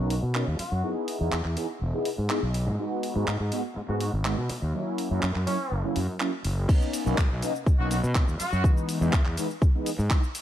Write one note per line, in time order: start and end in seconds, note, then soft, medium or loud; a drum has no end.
0.00 0.18 B1 medium
0.00 0.13 B3 medium
0.00 0.13 C#4 medium
0.00 0.14 D#4 medium
0.00 0.14 A#4 medium
0.10 0.18 F#4 medium
0.10 open hi-hat loud
0.23 0.42 B2 medium
0.34 0.44 B3 medium
0.34 0.45 C#4 medium
0.34 0.45 D#4 medium
0.34 0.45 A#4 loud
0.34 clap loud
0.47 0.57 D#2 medium
0.59 0.89 F#4 medium
0.59 muted fingered electric bass stroke soft
0.59 open hi-hat loud
0.72 0.81 F#2 medium
0.83 1.17 B3 medium
0.83 1.17 D#4 medium
0.83 1.18 E4 medium
0.83 1.18 G#4 medium
1.08 open hi-hat loud
1.20 1.30 E2 medium
1.20 1.35 B3 medium
1.20 1.36 D#4 medium
1.20 1.36 E4 medium
1.20 1.36 G#4 medium
1.32 1.43 E2 loud
1.32 clap loud
1.45 1.55 E2 medium
1.45 clap soft
1.56 1.66 B3 medium
1.56 1.66 D#4 medium
1.56 1.67 E4 medium
1.56 1.67 G#4 medium
1.56 open hi-hat medium
1.81 1.91 E1 medium
1.93 2.09 B3 medium
1.93 2.09 D#4 medium
1.93 2.09 E4 medium
1.93 2.09 G#4 medium
2.05 open hi-hat loud
2.18 2.28 G#2 medium
2.30 2.40 B3 medium
2.30 2.40 D#4 medium
2.30 2.40 E4 medium
2.30 2.40 G#4 medium
2.30 clap loud
2.42 2.68 B1 medium
2.54 open hi-hat medium
2.67 2.76 G#2 medium
2.79 3.13 G#3 medium
2.79 3.13 B3 medium
2.79 3.13 D#4 medium
2.79 3.13 F#4 medium
3.03 open hi-hat medium
3.15 3.25 G#2 medium
3.15 3.31 G#3 medium
3.15 3.31 B3 medium
3.15 3.31 D#4 medium
3.15 3.31 F#4 medium
3.27 3.38 G#2 loud
3.27 clap loud
3.40 3.50 G#2 medium
3.52 3.62 G#3 medium
3.52 3.62 B3 medium
3.52 3.62 D#4 medium
3.52 3.62 F#4 medium
3.52 open hi-hat medium
3.76 muted fingered electric bass stroke soft
3.88 4.09 G#2 medium
3.88 4.04 G#3 medium
3.88 4.04 B3 medium
3.88 4.04 D#4 medium
3.88 3.96 F#4 medium
3.88 4.04 F#4 medium
4.00 4.09 F#4 medium
4.00 open hi-hat medium
4.13 4.33 G#1 medium
4.25 4.35 G#3 medium
4.25 4.35 B3 medium
4.25 4.35 D#4 medium
4.25 4.35 F#4 loud
4.25 clap loud
4.38 4.47 B2 medium
4.49 muted fingered electric bass stroke soft
4.49 open hi-hat loud
4.62 4.72 D#2 medium
4.74 5.08 F#3 medium
4.74 5.08 A#3 medium
4.74 5.08 C#4 medium
4.74 5.08 E4 medium
4.98 open hi-hat loud
5.10 5.20 F#2 medium
5.10 5.26 F#3 medium
5.10 5.26 A#3 medium
5.10 5.26 C#4 medium
5.10 5.26 E4 medium
5.22 5.33 F#2 medium
5.22 clap loud
5.35 5.45 F#2 medium
5.35 clap soft
5.46 5.57 F#3 medium
5.46 5.57 A#3 medium
5.46 5.57 C#4 medium
5.46 5.84 C#4 medium
5.46 5.57 E4 medium
5.46 open hi-hat loud
5.71 5.82 F#1 medium
5.83 5.99 F#3 medium
5.83 5.99 A#3 medium
5.83 5.99 C#4 medium
5.83 5.99 E4 medium
5.83 muted fingered electric bass stroke soft
5.96 6.06 F#2 loud
5.96 open hi-hat loud
6.20 6.30 F#3 medium
6.20 6.30 A#3 medium
6.20 6.30 C#4 medium
6.20 6.30 E4 medium
6.20 clap loud
6.44 6.65 F#1 medium
6.44 open hi-hat loud
6.68 7.03 A#3 medium
6.68 7.03 B3 medium
6.68 7.03 C#4 medium
6.68 7.03 D#4 medium
6.68 kick loud
6.68 crash loud
6.68 cabasa soft
6.82 cabasa soft
6.93 open hi-hat loud
6.93 cabasa medium
7.05 7.16 B1 loud
7.05 7.21 A#3 medium
7.05 7.21 B3 medium
7.05 7.21 C#4 medium
7.05 7.21 D#4 medium
7.05 cabasa soft
7.17 7.28 B1 loud
7.17 kick loud
7.17 clap loud
7.17 cabasa soft
7.30 7.40 B1 medium
7.42 7.52 A#3 medium
7.42 7.52 B3 medium
7.42 7.52 C#4 medium
7.42 7.52 D#4 loud
7.42 open hi-hat loud
7.42 cabasa medium
7.55 cabasa soft
7.66 muted fingered electric bass stroke soft
7.66 kick loud
7.66 cabasa soft
7.79 7.99 B1 medium
7.79 7.94 A#3 medium
7.79 7.94 B3 medium
7.79 7.94 C#4 medium
7.79 7.94 D#4 medium
7.79 7.87 F#4 medium
7.90 7.99 F#4 medium
7.90 open hi-hat loud
7.90 cabasa medium
8.04 8.23 B2 loud
8.04 cabasa soft
8.15 8.25 A#3 medium
8.15 8.25 B3 medium
8.15 8.25 C#4 medium
8.15 8.25 D#4 loud
8.15 kick loud
8.15 clap loud
8.15 cabasa soft
8.28 8.37 D#2 medium
8.28 cabasa soft
8.39 8.69 F#4 medium
8.39 muted fingered electric bass stroke soft
8.39 open hi-hat loud
8.39 cabasa medium
8.52 8.62 F#2 medium
8.52 cabasa soft
8.64 8.98 E3 medium
8.64 8.98 G#3 medium
8.64 8.98 B3 medium
8.64 8.98 D#4 medium
8.64 kick loud
8.64 cabasa soft
8.77 cabasa soft
8.89 open hi-hat loud
8.89 cabasa medium
9.01 9.11 E2 loud
9.01 9.16 E3 medium
9.01 9.16 G#3 medium
9.01 9.16 B3 medium
9.01 9.16 D#4 medium
9.01 cabasa soft
9.13 9.23 E2 loud
9.13 kick loud
9.13 clap loud
9.13 cabasa soft
9.25 9.35 E2 medium
9.25 clap soft
9.37 9.47 E3 medium
9.37 9.47 G#3 medium
9.37 9.47 B3 medium
9.37 9.48 D#4 loud
9.37 open hi-hat loud
9.37 cabasa medium
9.50 cabasa soft
9.62 kick loud
9.62 cabasa soft
9.74 9.89 E3 medium
9.74 9.89 G#3 medium
9.74 9.89 B3 medium
9.74 9.90 D#4 medium
9.86 open hi-hat loud
9.86 cabasa medium
9.99 10.08 G#2 loud
9.99 cabasa soft
10.10 10.20 E3 medium
10.10 10.20 G#3 medium
10.10 10.20 B3 medium
10.10 10.21 D#4 loud
10.10 kick loud
10.10 clap loud
10.10 cabasa soft
10.23 cabasa soft
10.35 open hi-hat loud
10.35 cabasa medium